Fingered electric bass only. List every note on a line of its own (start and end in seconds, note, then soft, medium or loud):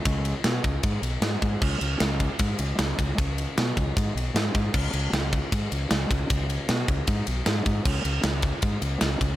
0.06 0.33 C#2 loud
0.45 0.58 B2 medium
0.64 0.78 C#2 medium
0.84 0.97 G#2 medium
1.02 1.16 B1 medium
1.22 1.35 G#2 medium
1.42 1.56 G#2 medium
1.62 1.75 C#2 loud
1.81 1.95 C#2 medium
2.01 2.28 C#2 medium
2.40 2.53 G#2 medium
2.59 2.73 C#2 medium
2.79 2.92 C#2 medium
2.99 3.12 C#2 medium
3.18 3.45 C#2 medium
3.58 3.71 B2 medium
3.77 3.91 C#2 medium
3.97 4.10 G#2 medium
4.15 4.29 B1 medium
4.34 4.48 G#2 medium
4.55 4.68 G#2 medium
4.74 4.88 C#2 medium
4.94 5.07 C#2 medium
5.13 5.40 C#2 medium
5.52 5.66 G#2 loud
5.72 5.85 C#2 medium
5.91 6.05 C#2 medium
6.11 6.24 C#2 medium
6.30 6.57 C#2 medium
6.69 6.83 B2 medium
6.88 7.02 C#2 medium
7.08 7.21 G#2 medium
7.27 7.41 B1 medium
7.47 7.60 G#2 medium
7.66 7.80 G#2 medium
7.85 7.99 C#2 loud
8.05 8.18 C#2 medium
8.24 8.51 C#2 medium
8.63 8.76 G#2 medium
8.82 8.96 C#2 medium
9.02 9.15 C#2 medium
9.21 9.35 C#2 medium